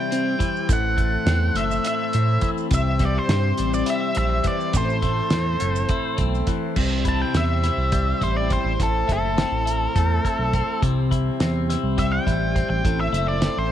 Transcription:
Already playing: clean electric guitar C3 E3 G3 C4 E4, transistor combo organ E3 G3 C4 G4 C5, lead electric guitar G5
0.11 analog synth bass C3, clean electric guitar C4, closed hi-hat
0.39 clean electric guitar E3, kick, closed hi-hat, maracas
0.56 maracas
0.68 analog synth bass A1, clean electric guitar A2, transistor combo organ A3 A4, kick, closed hi-hat, maracas
0.73 lead electric guitar F#5
0.97 clean electric guitar A3, kick, closed hi-hat
1.26 analog synth bass E2, clean electric guitar C4, snare, closed hi-hat
1.54 analog synth bass F#1, clean electric guitar A3, lead electric guitar E5, closed hi-hat
1.71 maracas
1.84 clean electric guitar E4, lead electric guitar E5, closed hi-hat
2.13 analog synth bass A2, clean electric guitar C4, closed hi-hat
2.41 clean electric guitar E3, kick, closed hi-hat, maracas
2.58 maracas
2.71 analog synth bass C2, clean electric guitar C3, transistor combo organ E3 G3 G4 C5, lead electric guitar E5, kick, closed hi-hat, maracas
2.99 clean electric guitar G3, kick, snare, closed hi-hat
3.05 lead electric guitar D5
3.18 lead electric guitar C5
3.28 analog synth bass G2, clean electric guitar C4, lead electric guitar C5, snare, closed hi-hat
3.58 analog synth bass A1, clean electric guitar G3, closed hi-hat
3.74 lead electric guitar D5, maracas
3.86 clean electric guitar E4, lead electric guitar E5, closed hi-hat
4.15 analog synth bass A#1, clean electric guitar C4, lead electric guitar E5, closed hi-hat
4.44 clean electric guitar E3, lead electric guitar D5, kick, closed hi-hat, maracas
4.61 maracas
4.73 analog synth bass A1, clean electric guitar A2, transistor combo organ A3 A4, lead electric guitar C5, kick, closed hi-hat, maracas
4.90 maracas
5.02 clean electric guitar A3, kick, closed hi-hat
5.30 analog synth bass E2, clean electric guitar C4, snare, closed hi-hat
5.60 analog synth bass F#1, clean electric guitar A3, closed hi-hat
5.76 maracas
5.89 clean electric guitar E4, kick, closed hi-hat
6.17 analog synth bass B1, clean electric guitar C4, kick, closed hi-hat
6.35 maracas
6.47 clean electric guitar E3, kick, closed hi-hat, maracas
6.76 analog synth bass C2, clean electric guitar C3, transistor combo organ E3 G3 C4 G4 C5, kick, crash
7.05 clean electric guitar E4, lead electric guitar A5, kick, closed hi-hat
7.22 lead electric guitar G5
7.34 analog synth bass E2, clean electric guitar C4, lead electric guitar E5, snare, closed hi-hat
7.63 clean electric guitar E4, snare, closed hi-hat
7.77 analog synth bass C2
7.92 clean electric guitar G3, kick, closed hi-hat
8.21 analog synth bass A1, clean electric guitar E4, lead electric guitar C5, kick, closed hi-hat
8.37 lead electric guitar D5
8.50 clean electric guitar C4, lead electric guitar C5, kick, closed hi-hat
8.64 analog synth bass A1
8.79 analog synth bass A1, clean electric guitar A2, transistor combo organ E3 A3 A4, lead electric guitar A4, kick, closed hi-hat
9.08 analog synth bass F#1, clean electric guitar E4, kick, closed hi-hat
9.13 lead electric guitar A4
9.37 clean electric guitar C4, snare, closed hi-hat
9.51 analog synth bass A1
9.66 clean electric guitar E4, closed hi-hat
9.96 analog synth bass E2, clean electric guitar A3, kick, closed hi-hat
10.25 clean electric guitar E4, kick, closed hi-hat
10.39 analog synth bass B1
10.53 clean electric guitar C4, kick, closed hi-hat
10.81 analog synth bass C2, clean electric guitar C3, transistor combo organ G3 G4, kick, closed hi-hat
11.11 clean electric guitar E4, kick, closed hi-hat
11.40 analog synth bass E2, clean electric guitar C4, snare, closed hi-hat
11.70 clean electric guitar E4, snare, closed hi-hat
11.83 analog synth bass C2
11.97 clean electric guitar G3, lead electric guitar E5, kick, closed hi-hat
12.12 lead electric guitar G5
12.27 analog synth bass A1, clean electric guitar E4, kick, closed hi-hat
12.55 clean electric guitar C4, kick, closed hi-hat
12.70 analog synth bass A1, lead electric guitar G5
12.84 analog synth bass A1, clean electric guitar A2, transistor combo organ A3 C4 A4, kick, closed hi-hat
13.01 lead electric guitar E5
13.12 analog synth bass F#1, clean electric guitar E4, closed hi-hat
13.28 lead electric guitar D5
13.41 clean electric guitar C4, snare, closed hi-hat
13.57 analog synth bass A1, lead electric guitar C5

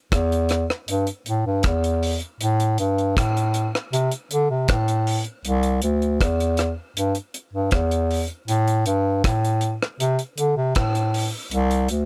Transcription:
0.12 bass clarinet E2, kick, cross-stick, closed hi-hat
0.32 closed hi-hat
0.49 cross-stick, closed hi-hat
0.70 cross-stick
0.88 bass clarinet G2, closed hi-hat
1.07 closed hi-hat
1.26 bass clarinet A2, closed hi-hat
1.46 bass clarinet G2
1.63 bass clarinet E2, kick, cross-stick, closed hi-hat
1.84 closed hi-hat
2.03 open hi-hat
2.20 closed hi-hat
2.40 bass clarinet A2, closed hi-hat
2.60 closed hi-hat
2.78 bass clarinet G2, closed hi-hat
2.98 closed hi-hat
3.17 bass clarinet A2, kick, cross-stick, closed hi-hat
3.37 closed hi-hat
3.54 closed hi-hat
3.75 cross-stick
3.93 bass clarinet C3, closed hi-hat
4.12 closed hi-hat
4.31 bass clarinet D3, closed hi-hat
4.50 bass clarinet C3
4.68 bass clarinet A2, kick, cross-stick, closed hi-hat
4.88 closed hi-hat
5.07 open hi-hat
5.24 closed hi-hat
5.45 bass clarinet C2, closed hi-hat
5.63 closed hi-hat
5.82 bass clarinet D2, closed hi-hat
6.02 closed hi-hat
6.21 bass clarinet E2, kick, cross-stick, closed hi-hat
6.40 closed hi-hat
6.57 cross-stick, closed hi-hat
6.96 bass clarinet G2, closed hi-hat
7.15 closed hi-hat
7.34 closed hi-hat
7.53 bass clarinet G2
7.71 bass clarinet E2, kick, cross-stick, closed hi-hat
7.91 closed hi-hat
8.11 open hi-hat
8.28 closed hi-hat
8.47 bass clarinet A2, closed hi-hat
8.68 closed hi-hat
8.86 bass clarinet G2, closed hi-hat
9.24 bass clarinet A2, kick, cross-stick, closed hi-hat
9.45 closed hi-hat
9.61 closed hi-hat
9.82 cross-stick
10.00 bass clarinet C3, closed hi-hat
10.19 closed hi-hat
10.38 bass clarinet D3, closed hi-hat
10.57 bass clarinet C3
10.75 bass clarinet A2, kick, cross-stick, closed hi-hat
10.95 closed hi-hat
11.14 open hi-hat
11.51 bass clarinet C2, closed hi-hat
11.71 closed hi-hat
11.88 bass clarinet D2, closed hi-hat

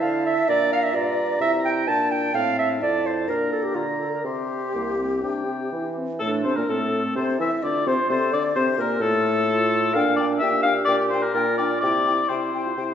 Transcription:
Already playing: french horn E4
0.01 bassoon D3, flute F5, clarinet F5, oboe A5
0.25 flute E5, clarinet E5
0.48 bassoon A#2, french horn D4, flute D5, clarinet D5, oboe A#5
0.71 flute F5, clarinet F5
0.83 flute E5, clarinet E5
0.93 bassoon G2, french horn F4, flute D5, clarinet D5, oboe A#5
1.40 bassoon C3, french horn E4, clarinet E5, flute E5
1.65 flute G5, clarinet G5
1.87 bassoon A#2, french horn D4, oboe G5, clarinet A5, flute A5
2.11 clarinet G5, flute G5
2.34 bassoon A2, french horn C4, flute F5, clarinet F5, oboe A5
2.58 flute E5, clarinet E5
2.80 bassoon F2, french horn E4, flute D5, clarinet D5, oboe A5
3.05 flute C5, clarinet C5
3.28 bassoon A#2, french horn D4, flute A#4, clarinet A#4, oboe A#5
3.51 flute A4, clarinet A4
3.63 flute G4, clarinet G4
3.75 bassoon D3, flute F4, clarinet F4, oboe A#5
3.99 clarinet A4, flute A4
4.11 flute A#4, clarinet A#4
4.24 bassoon C3, french horn C4, flute G4, clarinet G4, oboe C6
4.73 bassoon C2, french horn A#3
4.98 french horn C4
5.22 bassoon C3, french horn D4, oboe G5
5.46 french horn C4
5.72 bassoon E3, french horn E4
5.97 french horn C4
6.19 bassoon A2, french horn A3, clarinet D4, oboe A4, flute A4
6.44 bassoon C3, french horn C4, oboe C5, flute C5
6.56 bassoon A#2, french horn A#3, oboe A#4, flute A#4
6.69 bassoon A2, french horn A3, clarinet C4, flute A4, oboe A4
7.16 bassoon C3, french horn C4, clarinet A4, oboe C5, flute C5
7.39 bassoon E3, french horn E4, oboe E5, flute E5
7.63 bassoon D3, french horn D4, clarinet F4, flute D5, oboe D5
7.87 bassoon C3, french horn C4, oboe C5, flute C5
8.10 bassoon C3, french horn C4, clarinet A4, oboe C5, flute C5
8.33 bassoon D3, french horn D4, oboe D5, flute D5
8.56 bassoon C3, french horn C4, clarinet G4, oboe C5, flute C5
8.78 bassoon A#2, french horn A#3, oboe A#4, flute A#4
9.00 bassoon A2, french horn A3, clarinet F4, oboe A4, flute A4
9.50 clarinet F4
9.94 bassoon A#2, french horn D4, clarinet D4, oboe F5, flute G5
10.16 french horn D4, oboe D5, flute G5
10.39 bassoon A#2, french horn D4, clarinet G4, oboe E5, flute G5
10.63 french horn D4, oboe F5, flute G5
10.85 bassoon A#2, french horn D4, oboe D5, flute G5
11.10 french horn D4, oboe C5, flute G5
11.23 oboe A#4
11.34 bassoon A#2, french horn D4, clarinet F4, oboe A#4, flute G5
11.58 french horn D4, oboe D5, flute G5
11.81 bassoon C3, french horn E4, clarinet E4, oboe D5, flute G5
12.06 french horn E4, flute G5
12.29 bassoon C3, french horn E4, oboe C5, flute G5
12.53 french horn G4, flute G5
12.66 french horn F4
12.77 bassoon C3, french horn E4, flute G5

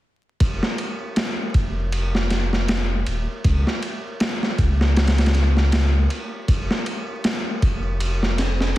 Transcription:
0.40 sub bass F1, kick, ride
0.63 snare
0.78 ride
1.16 snare, ride
1.54 sub bass F1, kick, ride
1.92 ride
2.15 snare
2.30 snare, ride
2.53 snare
2.68 snare, ride
3.07 sub bass D#1, ride
3.44 sub bass C#2, kick, ride
3.67 snare
3.82 ride
4.20 snare, ride
4.43 snare
4.59 sub bass C#2, kick, ride
4.81 snare
4.97 snare, ride
5.08 snare, ride
5.18 snare, ride
5.26 snare, ride
5.35 snare, ride
5.57 snare
5.72 snare, ride
6.10 ride
6.48 sub bass F1, kick, ride
6.71 snare
6.86 ride
7.24 snare, ride
7.62 sub bass F1, kick, ride
8.00 ride
8.23 snare
8.38 snare, ride
8.61 snare

